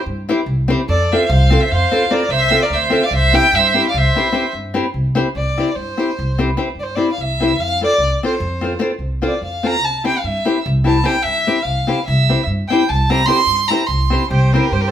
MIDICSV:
0, 0, Header, 1, 5, 480
1, 0, Start_track
1, 0, Tempo, 406780
1, 1050, Time_signature, 11, 3, 24, 8
1, 17595, End_track
2, 0, Start_track
2, 0, Title_t, "Fiddle"
2, 0, Program_c, 0, 110
2, 1050, Note_on_c, 0, 74, 86
2, 1321, Note_on_c, 0, 76, 79
2, 1339, Note_off_c, 0, 74, 0
2, 1532, Note_on_c, 0, 77, 85
2, 1550, Note_off_c, 0, 76, 0
2, 1894, Note_on_c, 0, 76, 70
2, 1912, Note_off_c, 0, 77, 0
2, 2022, Note_on_c, 0, 77, 83
2, 2040, Note_off_c, 0, 76, 0
2, 2496, Note_on_c, 0, 74, 93
2, 2514, Note_off_c, 0, 77, 0
2, 2717, Note_on_c, 0, 76, 112
2, 2735, Note_off_c, 0, 74, 0
2, 3096, Note_on_c, 0, 74, 93
2, 3114, Note_off_c, 0, 76, 0
2, 3224, Note_on_c, 0, 76, 89
2, 3242, Note_off_c, 0, 74, 0
2, 3582, Note_on_c, 0, 77, 96
2, 3599, Note_off_c, 0, 76, 0
2, 3687, Note_off_c, 0, 77, 0
2, 3709, Note_on_c, 0, 76, 107
2, 3954, Note_on_c, 0, 79, 112
2, 3972, Note_off_c, 0, 76, 0
2, 4184, Note_on_c, 0, 76, 96
2, 4202, Note_off_c, 0, 79, 0
2, 4554, Note_off_c, 0, 76, 0
2, 4587, Note_on_c, 0, 77, 67
2, 4693, Note_on_c, 0, 76, 80
2, 4711, Note_off_c, 0, 77, 0
2, 5356, Note_off_c, 0, 76, 0
2, 6326, Note_on_c, 0, 74, 79
2, 6732, Note_off_c, 0, 74, 0
2, 6732, Note_on_c, 0, 74, 57
2, 6788, Note_on_c, 0, 72, 74
2, 6805, Note_off_c, 0, 74, 0
2, 7532, Note_off_c, 0, 72, 0
2, 8017, Note_on_c, 0, 74, 73
2, 8059, Note_on_c, 0, 72, 70
2, 8076, Note_off_c, 0, 74, 0
2, 8202, Note_on_c, 0, 74, 82
2, 8220, Note_off_c, 0, 72, 0
2, 8395, Note_off_c, 0, 74, 0
2, 8402, Note_on_c, 0, 77, 64
2, 8505, Note_on_c, 0, 76, 80
2, 8523, Note_off_c, 0, 77, 0
2, 8971, Note_on_c, 0, 77, 99
2, 8989, Note_off_c, 0, 76, 0
2, 9228, Note_off_c, 0, 77, 0
2, 9249, Note_on_c, 0, 74, 103
2, 9691, Note_off_c, 0, 74, 0
2, 9742, Note_on_c, 0, 72, 64
2, 10366, Note_off_c, 0, 72, 0
2, 10940, Note_on_c, 0, 74, 65
2, 11120, Note_off_c, 0, 74, 0
2, 11139, Note_on_c, 0, 77, 70
2, 11410, Note_on_c, 0, 82, 98
2, 11428, Note_off_c, 0, 77, 0
2, 11615, Note_on_c, 0, 81, 83
2, 11633, Note_off_c, 0, 82, 0
2, 11870, Note_off_c, 0, 81, 0
2, 11880, Note_on_c, 0, 79, 75
2, 12015, Note_on_c, 0, 77, 57
2, 12033, Note_off_c, 0, 79, 0
2, 12099, Note_on_c, 0, 76, 75
2, 12117, Note_off_c, 0, 77, 0
2, 12582, Note_off_c, 0, 76, 0
2, 12829, Note_on_c, 0, 81, 82
2, 13046, Note_on_c, 0, 79, 91
2, 13064, Note_off_c, 0, 81, 0
2, 13246, Note_on_c, 0, 76, 96
2, 13263, Note_off_c, 0, 79, 0
2, 13729, Note_on_c, 0, 77, 79
2, 13747, Note_off_c, 0, 76, 0
2, 14221, Note_off_c, 0, 77, 0
2, 14228, Note_on_c, 0, 76, 84
2, 14690, Note_off_c, 0, 76, 0
2, 14970, Note_on_c, 0, 79, 88
2, 15207, Note_on_c, 0, 81, 86
2, 15225, Note_off_c, 0, 79, 0
2, 15456, Note_on_c, 0, 82, 103
2, 15474, Note_off_c, 0, 81, 0
2, 15646, Note_on_c, 0, 84, 120
2, 15664, Note_off_c, 0, 82, 0
2, 16142, Note_on_c, 0, 82, 86
2, 16159, Note_off_c, 0, 84, 0
2, 16359, Note_on_c, 0, 84, 67
2, 16376, Note_off_c, 0, 82, 0
2, 16869, Note_off_c, 0, 84, 0
2, 16876, Note_on_c, 0, 72, 76
2, 17141, Note_on_c, 0, 70, 83
2, 17159, Note_off_c, 0, 72, 0
2, 17375, Note_on_c, 0, 72, 79
2, 17392, Note_off_c, 0, 70, 0
2, 17475, Note_on_c, 0, 70, 67
2, 17492, Note_off_c, 0, 72, 0
2, 17555, Note_on_c, 0, 72, 76
2, 17573, Note_off_c, 0, 70, 0
2, 17595, Note_off_c, 0, 72, 0
2, 17595, End_track
3, 0, Start_track
3, 0, Title_t, "Accordion"
3, 0, Program_c, 1, 21
3, 1045, Note_on_c, 1, 69, 66
3, 1294, Note_off_c, 1, 69, 0
3, 1322, Note_on_c, 1, 72, 64
3, 1528, Note_off_c, 1, 72, 0
3, 1546, Note_on_c, 1, 72, 71
3, 1906, Note_off_c, 1, 72, 0
3, 1924, Note_on_c, 1, 72, 57
3, 2025, Note_off_c, 1, 72, 0
3, 2043, Note_on_c, 1, 72, 81
3, 2497, Note_off_c, 1, 72, 0
3, 2501, Note_on_c, 1, 70, 69
3, 2712, Note_off_c, 1, 70, 0
3, 2731, Note_on_c, 1, 72, 80
3, 3095, Note_off_c, 1, 72, 0
3, 3109, Note_on_c, 1, 70, 70
3, 3207, Note_off_c, 1, 70, 0
3, 3223, Note_on_c, 1, 72, 72
3, 3585, Note_off_c, 1, 72, 0
3, 3610, Note_on_c, 1, 74, 91
3, 3702, Note_off_c, 1, 74, 0
3, 3723, Note_on_c, 1, 72, 73
3, 3950, Note_off_c, 1, 72, 0
3, 3967, Note_on_c, 1, 76, 85
3, 4180, Note_off_c, 1, 76, 0
3, 4219, Note_on_c, 1, 72, 89
3, 4571, Note_off_c, 1, 72, 0
3, 4604, Note_on_c, 1, 74, 64
3, 4681, Note_off_c, 1, 74, 0
3, 4685, Note_on_c, 1, 72, 72
3, 5352, Note_off_c, 1, 72, 0
3, 16872, Note_on_c, 1, 67, 62
3, 17130, Note_off_c, 1, 67, 0
3, 17148, Note_on_c, 1, 67, 71
3, 17363, Note_off_c, 1, 67, 0
3, 17380, Note_on_c, 1, 67, 77
3, 17464, Note_off_c, 1, 67, 0
3, 17482, Note_on_c, 1, 67, 60
3, 17570, Note_off_c, 1, 67, 0
3, 17595, End_track
4, 0, Start_track
4, 0, Title_t, "Nylon-string guitar"
4, 0, Program_c, 2, 24
4, 338, Note_on_c, 2, 60, 74
4, 345, Note_on_c, 2, 64, 80
4, 351, Note_on_c, 2, 67, 57
4, 360, Note_on_c, 2, 72, 77
4, 466, Note_off_c, 2, 60, 0
4, 468, Note_off_c, 2, 64, 0
4, 472, Note_off_c, 2, 67, 0
4, 476, Note_off_c, 2, 72, 0
4, 803, Note_on_c, 2, 60, 78
4, 822, Note_on_c, 2, 64, 65
4, 829, Note_on_c, 2, 72, 86
4, 831, Note_on_c, 2, 67, 65
4, 941, Note_off_c, 2, 60, 0
4, 952, Note_off_c, 2, 64, 0
4, 954, Note_off_c, 2, 67, 0
4, 954, Note_off_c, 2, 72, 0
4, 1328, Note_on_c, 2, 60, 57
4, 1329, Note_on_c, 2, 65, 58
4, 1334, Note_on_c, 2, 69, 65
4, 1344, Note_on_c, 2, 72, 63
4, 1448, Note_off_c, 2, 60, 0
4, 1448, Note_off_c, 2, 65, 0
4, 1451, Note_off_c, 2, 69, 0
4, 1456, Note_off_c, 2, 72, 0
4, 1774, Note_on_c, 2, 60, 74
4, 1783, Note_on_c, 2, 65, 59
4, 1789, Note_on_c, 2, 69, 54
4, 1796, Note_on_c, 2, 72, 80
4, 1915, Note_off_c, 2, 60, 0
4, 1917, Note_off_c, 2, 65, 0
4, 1922, Note_off_c, 2, 69, 0
4, 1926, Note_off_c, 2, 72, 0
4, 2259, Note_on_c, 2, 60, 59
4, 2267, Note_on_c, 2, 65, 63
4, 2269, Note_on_c, 2, 69, 63
4, 2283, Note_on_c, 2, 72, 67
4, 2389, Note_off_c, 2, 60, 0
4, 2390, Note_off_c, 2, 65, 0
4, 2393, Note_off_c, 2, 69, 0
4, 2400, Note_off_c, 2, 72, 0
4, 2485, Note_on_c, 2, 60, 64
4, 2491, Note_on_c, 2, 69, 63
4, 2499, Note_on_c, 2, 65, 56
4, 2514, Note_on_c, 2, 72, 67
4, 2609, Note_off_c, 2, 60, 0
4, 2612, Note_off_c, 2, 69, 0
4, 2616, Note_off_c, 2, 65, 0
4, 2624, Note_off_c, 2, 72, 0
4, 2957, Note_on_c, 2, 60, 66
4, 2965, Note_on_c, 2, 69, 60
4, 2967, Note_on_c, 2, 65, 60
4, 2978, Note_on_c, 2, 72, 75
4, 3090, Note_off_c, 2, 60, 0
4, 3093, Note_off_c, 2, 69, 0
4, 3095, Note_off_c, 2, 65, 0
4, 3100, Note_off_c, 2, 72, 0
4, 3421, Note_on_c, 2, 60, 68
4, 3428, Note_on_c, 2, 65, 51
4, 3436, Note_on_c, 2, 69, 60
4, 3446, Note_on_c, 2, 72, 73
4, 3566, Note_off_c, 2, 60, 0
4, 3568, Note_off_c, 2, 65, 0
4, 3574, Note_off_c, 2, 69, 0
4, 3578, Note_off_c, 2, 72, 0
4, 3928, Note_on_c, 2, 60, 54
4, 3934, Note_on_c, 2, 64, 50
4, 3938, Note_on_c, 2, 67, 54
4, 3942, Note_on_c, 2, 72, 69
4, 4063, Note_off_c, 2, 60, 0
4, 4065, Note_off_c, 2, 64, 0
4, 4069, Note_off_c, 2, 67, 0
4, 4070, Note_off_c, 2, 72, 0
4, 4413, Note_on_c, 2, 60, 63
4, 4423, Note_on_c, 2, 64, 54
4, 4427, Note_on_c, 2, 67, 63
4, 4436, Note_on_c, 2, 72, 75
4, 4550, Note_off_c, 2, 60, 0
4, 4555, Note_off_c, 2, 64, 0
4, 4557, Note_off_c, 2, 67, 0
4, 4561, Note_off_c, 2, 72, 0
4, 4904, Note_on_c, 2, 60, 48
4, 4911, Note_on_c, 2, 64, 61
4, 4919, Note_on_c, 2, 67, 54
4, 4931, Note_on_c, 2, 72, 65
4, 5027, Note_off_c, 2, 60, 0
4, 5028, Note_off_c, 2, 64, 0
4, 5034, Note_off_c, 2, 67, 0
4, 5040, Note_off_c, 2, 72, 0
4, 5101, Note_on_c, 2, 60, 67
4, 5111, Note_on_c, 2, 64, 58
4, 5119, Note_on_c, 2, 67, 54
4, 5124, Note_on_c, 2, 72, 72
4, 5233, Note_off_c, 2, 60, 0
4, 5240, Note_off_c, 2, 64, 0
4, 5241, Note_off_c, 2, 72, 0
4, 5242, Note_off_c, 2, 67, 0
4, 5592, Note_on_c, 2, 60, 69
4, 5598, Note_on_c, 2, 64, 66
4, 5605, Note_on_c, 2, 67, 62
4, 5618, Note_on_c, 2, 72, 71
4, 5724, Note_off_c, 2, 60, 0
4, 5727, Note_off_c, 2, 64, 0
4, 5730, Note_off_c, 2, 67, 0
4, 5737, Note_off_c, 2, 72, 0
4, 6077, Note_on_c, 2, 60, 78
4, 6086, Note_on_c, 2, 64, 67
4, 6094, Note_on_c, 2, 67, 62
4, 6099, Note_on_c, 2, 72, 87
4, 6211, Note_off_c, 2, 60, 0
4, 6215, Note_off_c, 2, 64, 0
4, 6219, Note_off_c, 2, 67, 0
4, 6222, Note_off_c, 2, 72, 0
4, 6579, Note_on_c, 2, 60, 47
4, 6582, Note_on_c, 2, 64, 54
4, 6599, Note_on_c, 2, 67, 51
4, 6602, Note_on_c, 2, 72, 62
4, 6706, Note_off_c, 2, 60, 0
4, 6707, Note_off_c, 2, 64, 0
4, 6717, Note_off_c, 2, 67, 0
4, 6717, Note_off_c, 2, 72, 0
4, 7049, Note_on_c, 2, 60, 58
4, 7054, Note_on_c, 2, 64, 55
4, 7069, Note_on_c, 2, 67, 47
4, 7073, Note_on_c, 2, 72, 67
4, 7186, Note_off_c, 2, 60, 0
4, 7188, Note_off_c, 2, 64, 0
4, 7196, Note_off_c, 2, 67, 0
4, 7197, Note_off_c, 2, 72, 0
4, 7534, Note_on_c, 2, 60, 75
4, 7542, Note_on_c, 2, 64, 64
4, 7544, Note_on_c, 2, 67, 62
4, 7553, Note_on_c, 2, 72, 64
4, 7661, Note_off_c, 2, 60, 0
4, 7663, Note_off_c, 2, 67, 0
4, 7664, Note_off_c, 2, 64, 0
4, 7670, Note_off_c, 2, 72, 0
4, 7754, Note_on_c, 2, 60, 78
4, 7759, Note_on_c, 2, 64, 51
4, 7760, Note_on_c, 2, 67, 62
4, 7768, Note_on_c, 2, 72, 65
4, 7878, Note_off_c, 2, 60, 0
4, 7881, Note_off_c, 2, 64, 0
4, 7881, Note_off_c, 2, 67, 0
4, 7886, Note_off_c, 2, 72, 0
4, 8217, Note_on_c, 2, 60, 54
4, 8225, Note_on_c, 2, 64, 56
4, 8228, Note_on_c, 2, 67, 48
4, 8237, Note_on_c, 2, 72, 67
4, 8356, Note_off_c, 2, 60, 0
4, 8358, Note_off_c, 2, 64, 0
4, 8362, Note_off_c, 2, 67, 0
4, 8364, Note_off_c, 2, 72, 0
4, 8735, Note_on_c, 2, 60, 55
4, 8748, Note_on_c, 2, 64, 52
4, 8753, Note_on_c, 2, 67, 53
4, 8759, Note_on_c, 2, 72, 68
4, 8859, Note_off_c, 2, 60, 0
4, 8866, Note_off_c, 2, 64, 0
4, 8870, Note_off_c, 2, 67, 0
4, 8870, Note_off_c, 2, 72, 0
4, 9216, Note_on_c, 2, 60, 49
4, 9227, Note_on_c, 2, 65, 50
4, 9233, Note_on_c, 2, 69, 49
4, 9239, Note_on_c, 2, 72, 53
4, 9344, Note_off_c, 2, 60, 0
4, 9350, Note_off_c, 2, 65, 0
4, 9353, Note_off_c, 2, 69, 0
4, 9356, Note_off_c, 2, 72, 0
4, 9713, Note_on_c, 2, 60, 69
4, 9722, Note_on_c, 2, 65, 55
4, 9729, Note_on_c, 2, 72, 73
4, 9732, Note_on_c, 2, 69, 61
4, 9838, Note_off_c, 2, 60, 0
4, 9843, Note_off_c, 2, 65, 0
4, 9844, Note_off_c, 2, 72, 0
4, 9847, Note_off_c, 2, 69, 0
4, 10162, Note_on_c, 2, 60, 60
4, 10174, Note_on_c, 2, 65, 51
4, 10187, Note_on_c, 2, 69, 46
4, 10198, Note_on_c, 2, 72, 67
4, 10294, Note_off_c, 2, 60, 0
4, 10300, Note_off_c, 2, 65, 0
4, 10306, Note_off_c, 2, 69, 0
4, 10312, Note_off_c, 2, 72, 0
4, 10373, Note_on_c, 2, 65, 56
4, 10378, Note_on_c, 2, 60, 77
4, 10383, Note_on_c, 2, 69, 72
4, 10399, Note_on_c, 2, 72, 72
4, 10508, Note_off_c, 2, 65, 0
4, 10510, Note_off_c, 2, 60, 0
4, 10513, Note_off_c, 2, 69, 0
4, 10521, Note_off_c, 2, 72, 0
4, 10877, Note_on_c, 2, 60, 53
4, 10883, Note_on_c, 2, 65, 59
4, 10891, Note_on_c, 2, 72, 64
4, 10893, Note_on_c, 2, 69, 59
4, 11005, Note_off_c, 2, 60, 0
4, 11007, Note_off_c, 2, 65, 0
4, 11012, Note_off_c, 2, 72, 0
4, 11013, Note_off_c, 2, 69, 0
4, 11366, Note_on_c, 2, 60, 57
4, 11376, Note_on_c, 2, 65, 59
4, 11381, Note_on_c, 2, 69, 45
4, 11382, Note_on_c, 2, 72, 55
4, 11494, Note_off_c, 2, 60, 0
4, 11500, Note_off_c, 2, 65, 0
4, 11501, Note_off_c, 2, 72, 0
4, 11502, Note_off_c, 2, 69, 0
4, 11845, Note_on_c, 2, 64, 51
4, 11854, Note_on_c, 2, 60, 68
4, 11860, Note_on_c, 2, 72, 64
4, 11868, Note_on_c, 2, 67, 52
4, 11979, Note_off_c, 2, 64, 0
4, 11984, Note_off_c, 2, 60, 0
4, 11986, Note_off_c, 2, 72, 0
4, 11991, Note_off_c, 2, 67, 0
4, 12334, Note_on_c, 2, 60, 66
4, 12335, Note_on_c, 2, 64, 53
4, 12343, Note_on_c, 2, 67, 58
4, 12349, Note_on_c, 2, 72, 76
4, 12468, Note_off_c, 2, 64, 0
4, 12469, Note_off_c, 2, 60, 0
4, 12474, Note_off_c, 2, 67, 0
4, 12475, Note_off_c, 2, 72, 0
4, 12792, Note_on_c, 2, 60, 60
4, 12801, Note_on_c, 2, 64, 62
4, 12806, Note_on_c, 2, 67, 60
4, 12825, Note_on_c, 2, 72, 66
4, 12930, Note_off_c, 2, 60, 0
4, 12932, Note_off_c, 2, 64, 0
4, 12937, Note_off_c, 2, 67, 0
4, 12946, Note_off_c, 2, 72, 0
4, 13022, Note_on_c, 2, 60, 59
4, 13029, Note_on_c, 2, 64, 54
4, 13038, Note_on_c, 2, 67, 57
4, 13043, Note_on_c, 2, 72, 71
4, 13154, Note_off_c, 2, 60, 0
4, 13156, Note_off_c, 2, 64, 0
4, 13162, Note_off_c, 2, 67, 0
4, 13163, Note_off_c, 2, 72, 0
4, 13534, Note_on_c, 2, 64, 58
4, 13539, Note_on_c, 2, 60, 68
4, 13539, Note_on_c, 2, 67, 65
4, 13550, Note_on_c, 2, 72, 59
4, 13655, Note_off_c, 2, 64, 0
4, 13657, Note_off_c, 2, 67, 0
4, 13658, Note_off_c, 2, 60, 0
4, 13663, Note_off_c, 2, 72, 0
4, 14007, Note_on_c, 2, 60, 59
4, 14018, Note_on_c, 2, 64, 59
4, 14022, Note_on_c, 2, 67, 58
4, 14028, Note_on_c, 2, 72, 64
4, 14139, Note_off_c, 2, 60, 0
4, 14141, Note_off_c, 2, 64, 0
4, 14145, Note_off_c, 2, 67, 0
4, 14147, Note_off_c, 2, 72, 0
4, 14506, Note_on_c, 2, 67, 54
4, 14507, Note_on_c, 2, 60, 51
4, 14512, Note_on_c, 2, 64, 55
4, 14522, Note_on_c, 2, 72, 69
4, 14632, Note_off_c, 2, 67, 0
4, 14633, Note_off_c, 2, 60, 0
4, 14636, Note_off_c, 2, 64, 0
4, 14640, Note_off_c, 2, 72, 0
4, 14988, Note_on_c, 2, 60, 69
4, 15008, Note_on_c, 2, 64, 62
4, 15011, Note_on_c, 2, 67, 68
4, 15016, Note_on_c, 2, 72, 72
4, 15119, Note_off_c, 2, 60, 0
4, 15130, Note_off_c, 2, 64, 0
4, 15130, Note_off_c, 2, 67, 0
4, 15133, Note_off_c, 2, 72, 0
4, 15456, Note_on_c, 2, 60, 73
4, 15469, Note_on_c, 2, 64, 55
4, 15469, Note_on_c, 2, 67, 67
4, 15472, Note_on_c, 2, 72, 65
4, 15586, Note_off_c, 2, 60, 0
4, 15591, Note_off_c, 2, 67, 0
4, 15593, Note_off_c, 2, 64, 0
4, 15594, Note_off_c, 2, 72, 0
4, 15663, Note_on_c, 2, 60, 67
4, 15671, Note_on_c, 2, 64, 56
4, 15677, Note_on_c, 2, 67, 69
4, 15691, Note_on_c, 2, 72, 74
4, 15799, Note_off_c, 2, 60, 0
4, 15803, Note_off_c, 2, 64, 0
4, 15806, Note_off_c, 2, 67, 0
4, 15813, Note_off_c, 2, 72, 0
4, 16170, Note_on_c, 2, 60, 62
4, 16177, Note_on_c, 2, 64, 63
4, 16181, Note_on_c, 2, 67, 56
4, 16198, Note_on_c, 2, 72, 71
4, 16299, Note_off_c, 2, 60, 0
4, 16303, Note_off_c, 2, 64, 0
4, 16304, Note_off_c, 2, 67, 0
4, 16313, Note_off_c, 2, 72, 0
4, 16640, Note_on_c, 2, 60, 69
4, 16647, Note_on_c, 2, 64, 59
4, 16660, Note_on_c, 2, 67, 54
4, 16668, Note_on_c, 2, 72, 74
4, 16780, Note_off_c, 2, 60, 0
4, 16784, Note_off_c, 2, 64, 0
4, 16791, Note_off_c, 2, 67, 0
4, 16793, Note_off_c, 2, 72, 0
4, 17153, Note_on_c, 2, 60, 66
4, 17160, Note_on_c, 2, 64, 48
4, 17169, Note_on_c, 2, 67, 60
4, 17178, Note_on_c, 2, 72, 72
4, 17283, Note_off_c, 2, 60, 0
4, 17287, Note_off_c, 2, 64, 0
4, 17292, Note_off_c, 2, 67, 0
4, 17294, Note_off_c, 2, 72, 0
4, 17595, End_track
5, 0, Start_track
5, 0, Title_t, "Upright bass"
5, 0, Program_c, 3, 32
5, 71, Note_on_c, 3, 43, 78
5, 365, Note_off_c, 3, 43, 0
5, 545, Note_on_c, 3, 36, 85
5, 843, Note_off_c, 3, 36, 0
5, 1046, Note_on_c, 3, 41, 105
5, 1340, Note_off_c, 3, 41, 0
5, 1527, Note_on_c, 3, 36, 120
5, 1823, Note_off_c, 3, 36, 0
5, 2023, Note_on_c, 3, 41, 99
5, 2172, Note_off_c, 3, 41, 0
5, 2701, Note_on_c, 3, 36, 81
5, 2995, Note_off_c, 3, 36, 0
5, 3183, Note_on_c, 3, 38, 84
5, 3479, Note_off_c, 3, 38, 0
5, 3670, Note_on_c, 3, 36, 89
5, 3966, Note_off_c, 3, 36, 0
5, 4161, Note_on_c, 3, 43, 101
5, 4457, Note_off_c, 3, 43, 0
5, 4651, Note_on_c, 3, 36, 107
5, 4801, Note_off_c, 3, 36, 0
5, 5346, Note_on_c, 3, 43, 68
5, 5637, Note_off_c, 3, 43, 0
5, 5827, Note_on_c, 3, 36, 78
5, 6120, Note_off_c, 3, 36, 0
5, 6312, Note_on_c, 3, 36, 82
5, 6606, Note_off_c, 3, 36, 0
5, 6797, Note_on_c, 3, 43, 74
5, 6958, Note_off_c, 3, 43, 0
5, 7300, Note_on_c, 3, 36, 98
5, 7707, Note_off_c, 3, 36, 0
5, 7964, Note_on_c, 3, 43, 61
5, 8261, Note_off_c, 3, 43, 0
5, 8474, Note_on_c, 3, 36, 68
5, 8956, Note_off_c, 3, 36, 0
5, 8956, Note_on_c, 3, 41, 79
5, 9249, Note_off_c, 3, 41, 0
5, 9421, Note_on_c, 3, 36, 75
5, 9587, Note_off_c, 3, 36, 0
5, 9914, Note_on_c, 3, 41, 102
5, 10328, Note_off_c, 3, 41, 0
5, 10604, Note_on_c, 3, 36, 68
5, 10901, Note_off_c, 3, 36, 0
5, 11107, Note_on_c, 3, 41, 67
5, 11575, Note_off_c, 3, 41, 0
5, 11575, Note_on_c, 3, 36, 102
5, 11875, Note_off_c, 3, 36, 0
5, 12081, Note_on_c, 3, 43, 93
5, 12242, Note_off_c, 3, 43, 0
5, 12576, Note_on_c, 3, 36, 112
5, 12985, Note_off_c, 3, 36, 0
5, 13263, Note_on_c, 3, 43, 57
5, 13556, Note_off_c, 3, 43, 0
5, 13743, Note_on_c, 3, 36, 68
5, 14039, Note_off_c, 3, 36, 0
5, 14250, Note_on_c, 3, 36, 98
5, 14541, Note_off_c, 3, 36, 0
5, 14711, Note_on_c, 3, 43, 82
5, 14877, Note_off_c, 3, 43, 0
5, 15216, Note_on_c, 3, 36, 104
5, 15629, Note_off_c, 3, 36, 0
5, 15890, Note_on_c, 3, 43, 74
5, 16190, Note_off_c, 3, 43, 0
5, 16385, Note_on_c, 3, 36, 85
5, 16684, Note_off_c, 3, 36, 0
5, 16881, Note_on_c, 3, 36, 111
5, 17180, Note_off_c, 3, 36, 0
5, 17367, Note_on_c, 3, 43, 90
5, 17595, Note_off_c, 3, 43, 0
5, 17595, End_track
0, 0, End_of_file